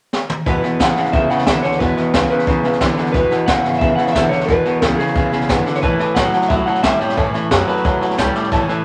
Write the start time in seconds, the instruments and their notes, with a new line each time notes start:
0.13 snare
0.30 mid tom
0.46 upright bass E1, clean electric guitar E2 B2 B4, steel-string acoustic guitar E3 G#3 B3 E4, upright piano B4 E5 G#5, kick, snare
0.63 clean electric guitar E2 B2, steel-string acoustic guitar G#3 B3 E4, upright piano B4 E5 G#5, snare
0.79 upright bass E1, clean electric guitar E2 C#3 F#5, steel-string acoustic guitar E3 G#3 B3 E4, upright piano B4 E5 G#5, kick, snare, hi-hat pedal
0.96 upright bass G#1, clean electric guitar E2 C#3, steel-string acoustic guitar G#3 B3 E4, upright piano B4 E5 G#5, snare
1.05 snare
1.13 upright bass A1, clean electric guitar E2 C#3 E5, steel-string acoustic guitar E3 G#3 B3 E4, upright piano B4 E5 G#5, kick, snare
1.29 clean electric guitar E2 C#3 F#5, steel-string acoustic guitar G#3 B3 E4, upright piano B4 E5 B5, muted upright bass stroke, snare
1.38 snare
1.46 clean electric guitar E2 D3 E5, steel-string acoustic guitar E3 G#3 B3 E4, upright piano B4 E5 G#5, kick, snare, hi-hat pedal
1.63 upright bass C#2, clean electric guitar E2 D3 C#5, steel-string acoustic guitar G#3 B3 E4, upright piano B4 G#5, snare
1.72 snare
1.79 clean electric guitar E2 B2 B4, upright bass E2, steel-string acoustic guitar E3 G#3 B3 E4, upright piano B4 E5 G#5, kick, snare
1.97 clean electric guitar E2 B2, steel-string acoustic guitar G#3 B3 E4, upright piano B4 E5 G#5, snare
2.13 upright bass C#2, clean electric guitar E2 C#3, steel-string acoustic guitar E3 G#3 B3 E4, upright piano B4 E5 B5, kick, snare, hi-hat pedal
2.30 clean electric guitar E2 C#3 B4, steel-string acoustic guitar G#3 B3 E4, upright piano B4 E5 G#5, snare
2.39 snare
2.46 upright bass C#2, clean electric guitar E2 C#3, steel-string acoustic guitar E3 G#3 B3 E4, upright piano B4 E5 G#5, kick, snare
2.63 upright bass B1, clean electric guitar E2 C#3, steel-string acoustic guitar G#3 B3 E4, upright piano B4 E5 G#5, snare
2.73 snare
2.80 upright bass A1, clean electric guitar E2 D3, steel-string acoustic guitar E3 G#3 B3 E4, upright piano B4 E5 G#5, kick, snare, hi-hat pedal
2.97 clean electric guitar E2 D3, steel-string acoustic guitar G#3 B3 E4, upright piano B4 E5 G#5, muted upright bass stroke, snare
3.06 snare
3.12 upright bass E1, clean electric guitar E2 B2 B4, steel-string acoustic guitar E3 G#3 B3 E4, upright piano B4 E5 G#5, kick, snare
3.31 clean electric guitar E2 B2, steel-string acoustic guitar G#3 B3 E4, upright piano B4 E5 G#5, muted upright bass stroke, snare
3.46 upright bass E1, clean electric guitar E2 C#3 F#5, steel-string acoustic guitar E3 G#3 B3 E4, upright piano E5 G#5, kick, snare, hi-hat pedal
3.64 upright bass G#1, clean electric guitar E2 C#3, steel-string acoustic guitar G#3 B3 E4, upright piano B4 E5 G#5, snare
3.73 snare
3.79 upright bass A1, clean electric guitar E2 C#3 E5, steel-string acoustic guitar E3 G#3, upright piano B4 E5 G#5, kick, snare
3.83 steel-string acoustic guitar B3 E4
3.96 clean electric guitar E2 C#3 F#5, steel-string acoustic guitar B3 E4, upright piano B4 E5 G#5, snare
4.00 steel-string acoustic guitar G#3
4.07 snare
4.12 upright bass B1, clean electric guitar E2 D3 E5, steel-string acoustic guitar E3 G#3 B3, upright piano B4 E5 G#5, kick, snare, hi-hat pedal
4.17 steel-string acoustic guitar E4
4.29 upright bass C#2, clean electric guitar E2 D3 C#5, steel-string acoustic guitar B3 E4, upright piano B4 G#5, snare
4.34 steel-string acoustic guitar G#3
4.40 snare
4.46 upright bass E2, clean electric guitar E2 B2 B4, steel-string acoustic guitar E3 G#3, upright piano B4 E5 G#5, kick, snare
4.50 steel-string acoustic guitar B3 E4
4.65 clean electric guitar E2 B2, steel-string acoustic guitar G#3 B3 E4, upright piano E5 G#5, muted upright bass stroke, snare
4.82 upright bass C#2, clean electric guitar E2 C#3, steel-string acoustic guitar E3 G#3 B3 E4, upright piano E5 G#5, kick, snare, hi-hat pedal
4.97 clean electric guitar E2 C#3 G#4, steel-string acoustic guitar G#3 B3 E4, upright piano B4 E5 G#5, snare
5.07 snare
5.15 upright bass C#2, clean electric guitar E2 C#3, steel-string acoustic guitar E3 G#3 B3 E4, upright piano B4 E5 G#5, kick, snare
5.32 upright bass B1, clean electric guitar E2 C#3, steel-string acoustic guitar G#3 B3 E4, upright piano B4 E5 G#5, snare
5.41 snare
5.49 upright bass G#1, clean electric guitar E2 D3, steel-string acoustic guitar E3 G#3 B3 E4, upright piano B4 E5 G#5, kick, snare, hi-hat pedal
5.65 clean electric guitar E2 D3, steel-string acoustic guitar G#3 B3 E4, upright piano B4 E5 G#5, snare
5.75 clean electric guitar C#5, snare
5.82 upright bass A1, steel-string acoustic guitar A2 E3 A3 C#4 E4, clean electric guitar A2 E3 B4, upright piano C#5 E5 A5, kick, snare
5.99 clean electric guitar A2 E3, steel-string acoustic guitar A3 C#4 E4, upright piano C#5 E5 A5, muted upright bass stroke, snare
6.15 upright bass A1, steel-string acoustic guitar A2 E3 A3 C#4 E4, clean electric guitar A2 F#3 F#5, upright piano C#5 E5 A5, kick, snare, hi-hat pedal
6.32 upright bass C#2, clean electric guitar A2 F#3, steel-string acoustic guitar A3 C#4 E4, upright piano C#5 E5 A5, snare
6.42 snare
6.48 upright bass C#2, clean electric guitar A2 F#3 E5, steel-string acoustic guitar E3 A3 C#4 E4, upright piano C#5 E5 B5, kick, snare
6.66 clean electric guitar A2 F#3 F#5, steel-string acoustic guitar A3 C#4 E4, upright piano C#5 A5, snare
6.75 snare
6.83 steel-string acoustic guitar A2 E3 A3 C#4 E4, clean electric guitar A2 G3 E5, upright piano C#5 E5 A5, kick, snare, hi-hat pedal
6.99 upright bass F#2, clean electric guitar A2 G3 C#5, steel-string acoustic guitar A3 C#4 E4, upright piano C#5 E5 A5, snare
7.09 snare
7.17 steel-string acoustic guitar A2 E3 A3 C#4 E4, clean electric guitar A2 E3 B4, upright bass A2, upright piano C#5 E5 A5, kick, snare
7.34 clean electric guitar A2 E3, steel-string acoustic guitar A3 C#4 E4, upright piano C#5 E5 A5, muted upright bass stroke, snare
7.51 upright bass F#2, steel-string acoustic guitar A2 E3 A3 C#4 E4, clean electric guitar A2 F#3, upright piano C#5 E5 A5, kick, snare, hi-hat pedal
7.68 clean electric guitar A2 F#3 B4, steel-string acoustic guitar A3 C#4 E4, upright piano C#5 E5 A5, snare
7.77 snare
7.84 clean electric guitar A2 F#3, steel-string acoustic guitar E3 A3 C#4 E4, upright piano C#5 E5 A5, kick, snare
8.01 upright bass E2, clean electric guitar A2 F#3, steel-string acoustic guitar A3 C#4 E4, upright piano C#5 E5 A5, snare
8.10 snare
8.18 upright bass C#2, steel-string acoustic guitar A2 E3 A3 C#4 E4, clean electric guitar A2 G3, upright piano C#5 E5 A5, kick, snare, hi-hat pedal
8.34 clean electric guitar A2 G3, steel-string acoustic guitar A3 C#4 E4, upright piano C#5 E5 A5, snare
8.44 snare
8.52 upright bass A1, clean electric guitar A2 E3, steel-string acoustic guitar A2 E3 A3 C#4 E4, upright piano C#5 E5 A5, kick, snare
8.68 clean electric guitar A2 E3, steel-string acoustic guitar A3 C#4 E4, upright piano E5 A5, muted upright bass stroke, snare